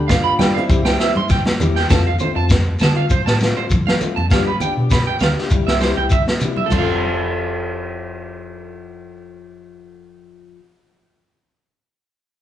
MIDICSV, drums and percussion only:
0, 0, Header, 1, 3, 480
1, 0, Start_track
1, 0, Key_signature, -1, "major"
1, 0, Tempo, 601202
1, 1518, Time_signature, 4, 2, 24, 8
1, 9912, End_track
2, 0, Start_track
2, 0, Title_t, "Shekere"
2, 83, Note_on_c, 9, 82, 87
2, 162, Note_off_c, 9, 82, 0
2, 323, Note_on_c, 9, 82, 63
2, 403, Note_off_c, 9, 82, 0
2, 558, Note_on_c, 9, 82, 80
2, 638, Note_off_c, 9, 82, 0
2, 800, Note_on_c, 9, 82, 62
2, 879, Note_off_c, 9, 82, 0
2, 1033, Note_on_c, 9, 82, 88
2, 1113, Note_off_c, 9, 82, 0
2, 1284, Note_on_c, 9, 82, 68
2, 1363, Note_off_c, 9, 82, 0
2, 1515, Note_on_c, 9, 82, 100
2, 1595, Note_off_c, 9, 82, 0
2, 1750, Note_on_c, 9, 82, 70
2, 1830, Note_off_c, 9, 82, 0
2, 1992, Note_on_c, 9, 82, 96
2, 2071, Note_off_c, 9, 82, 0
2, 2229, Note_on_c, 9, 82, 64
2, 2309, Note_off_c, 9, 82, 0
2, 2472, Note_on_c, 9, 82, 85
2, 2552, Note_off_c, 9, 82, 0
2, 2712, Note_on_c, 9, 82, 60
2, 2792, Note_off_c, 9, 82, 0
2, 2954, Note_on_c, 9, 82, 78
2, 3034, Note_off_c, 9, 82, 0
2, 3199, Note_on_c, 9, 82, 65
2, 3279, Note_off_c, 9, 82, 0
2, 3437, Note_on_c, 9, 82, 81
2, 3517, Note_off_c, 9, 82, 0
2, 3681, Note_on_c, 9, 82, 62
2, 3760, Note_off_c, 9, 82, 0
2, 3914, Note_on_c, 9, 82, 89
2, 3994, Note_off_c, 9, 82, 0
2, 4148, Note_on_c, 9, 82, 62
2, 4227, Note_off_c, 9, 82, 0
2, 4395, Note_on_c, 9, 82, 80
2, 4475, Note_off_c, 9, 82, 0
2, 4633, Note_on_c, 9, 82, 59
2, 4713, Note_off_c, 9, 82, 0
2, 4869, Note_on_c, 9, 82, 86
2, 4949, Note_off_c, 9, 82, 0
2, 5114, Note_on_c, 9, 82, 76
2, 5194, Note_off_c, 9, 82, 0
2, 5356, Note_on_c, 9, 82, 70
2, 5436, Note_off_c, 9, 82, 0
2, 9912, End_track
3, 0, Start_track
3, 0, Title_t, "Drums"
3, 75, Note_on_c, 9, 36, 84
3, 77, Note_on_c, 9, 38, 65
3, 155, Note_off_c, 9, 36, 0
3, 157, Note_off_c, 9, 38, 0
3, 313, Note_on_c, 9, 63, 74
3, 313, Note_on_c, 9, 64, 74
3, 319, Note_on_c, 9, 38, 68
3, 393, Note_off_c, 9, 63, 0
3, 393, Note_off_c, 9, 64, 0
3, 399, Note_off_c, 9, 38, 0
3, 556, Note_on_c, 9, 36, 84
3, 556, Note_on_c, 9, 63, 69
3, 635, Note_off_c, 9, 36, 0
3, 636, Note_off_c, 9, 63, 0
3, 678, Note_on_c, 9, 38, 66
3, 758, Note_off_c, 9, 38, 0
3, 797, Note_on_c, 9, 38, 62
3, 877, Note_off_c, 9, 38, 0
3, 925, Note_on_c, 9, 63, 71
3, 1004, Note_off_c, 9, 63, 0
3, 1033, Note_on_c, 9, 38, 27
3, 1037, Note_on_c, 9, 36, 88
3, 1113, Note_off_c, 9, 38, 0
3, 1117, Note_off_c, 9, 36, 0
3, 1162, Note_on_c, 9, 63, 69
3, 1165, Note_on_c, 9, 38, 60
3, 1241, Note_off_c, 9, 63, 0
3, 1245, Note_off_c, 9, 38, 0
3, 1279, Note_on_c, 9, 64, 76
3, 1359, Note_off_c, 9, 64, 0
3, 1402, Note_on_c, 9, 38, 23
3, 1482, Note_off_c, 9, 38, 0
3, 1520, Note_on_c, 9, 38, 61
3, 1520, Note_on_c, 9, 64, 64
3, 1521, Note_on_c, 9, 36, 83
3, 1600, Note_off_c, 9, 38, 0
3, 1600, Note_off_c, 9, 64, 0
3, 1601, Note_off_c, 9, 36, 0
3, 1763, Note_on_c, 9, 64, 61
3, 1843, Note_off_c, 9, 64, 0
3, 2001, Note_on_c, 9, 38, 62
3, 2002, Note_on_c, 9, 36, 81
3, 2081, Note_off_c, 9, 38, 0
3, 2082, Note_off_c, 9, 36, 0
3, 2247, Note_on_c, 9, 63, 57
3, 2247, Note_on_c, 9, 64, 64
3, 2249, Note_on_c, 9, 38, 62
3, 2327, Note_off_c, 9, 63, 0
3, 2327, Note_off_c, 9, 64, 0
3, 2329, Note_off_c, 9, 38, 0
3, 2482, Note_on_c, 9, 36, 86
3, 2562, Note_off_c, 9, 36, 0
3, 2612, Note_on_c, 9, 38, 65
3, 2692, Note_off_c, 9, 38, 0
3, 2726, Note_on_c, 9, 63, 59
3, 2733, Note_on_c, 9, 38, 59
3, 2806, Note_off_c, 9, 63, 0
3, 2812, Note_off_c, 9, 38, 0
3, 2966, Note_on_c, 9, 36, 85
3, 3046, Note_off_c, 9, 36, 0
3, 3089, Note_on_c, 9, 63, 55
3, 3100, Note_on_c, 9, 38, 61
3, 3169, Note_off_c, 9, 63, 0
3, 3179, Note_off_c, 9, 38, 0
3, 3204, Note_on_c, 9, 64, 56
3, 3284, Note_off_c, 9, 64, 0
3, 3334, Note_on_c, 9, 63, 53
3, 3414, Note_off_c, 9, 63, 0
3, 3438, Note_on_c, 9, 64, 54
3, 3445, Note_on_c, 9, 36, 78
3, 3447, Note_on_c, 9, 38, 62
3, 3518, Note_off_c, 9, 64, 0
3, 3525, Note_off_c, 9, 36, 0
3, 3527, Note_off_c, 9, 38, 0
3, 3676, Note_on_c, 9, 64, 56
3, 3756, Note_off_c, 9, 64, 0
3, 3924, Note_on_c, 9, 36, 80
3, 3929, Note_on_c, 9, 38, 62
3, 4004, Note_off_c, 9, 36, 0
3, 4009, Note_off_c, 9, 38, 0
3, 4160, Note_on_c, 9, 63, 55
3, 4160, Note_on_c, 9, 64, 59
3, 4164, Note_on_c, 9, 38, 59
3, 4240, Note_off_c, 9, 63, 0
3, 4240, Note_off_c, 9, 64, 0
3, 4244, Note_off_c, 9, 38, 0
3, 4297, Note_on_c, 9, 38, 25
3, 4377, Note_off_c, 9, 38, 0
3, 4404, Note_on_c, 9, 36, 74
3, 4483, Note_off_c, 9, 36, 0
3, 4534, Note_on_c, 9, 38, 62
3, 4614, Note_off_c, 9, 38, 0
3, 4639, Note_on_c, 9, 63, 57
3, 4645, Note_on_c, 9, 38, 57
3, 4719, Note_off_c, 9, 63, 0
3, 4724, Note_off_c, 9, 38, 0
3, 4885, Note_on_c, 9, 36, 81
3, 4965, Note_off_c, 9, 36, 0
3, 5004, Note_on_c, 9, 63, 56
3, 5013, Note_on_c, 9, 38, 59
3, 5084, Note_off_c, 9, 63, 0
3, 5093, Note_off_c, 9, 38, 0
3, 5122, Note_on_c, 9, 64, 57
3, 5201, Note_off_c, 9, 64, 0
3, 5242, Note_on_c, 9, 63, 55
3, 5322, Note_off_c, 9, 63, 0
3, 5352, Note_on_c, 9, 63, 73
3, 5364, Note_on_c, 9, 36, 67
3, 5364, Note_on_c, 9, 49, 53
3, 5432, Note_off_c, 9, 63, 0
3, 5444, Note_off_c, 9, 36, 0
3, 5444, Note_off_c, 9, 49, 0
3, 9912, End_track
0, 0, End_of_file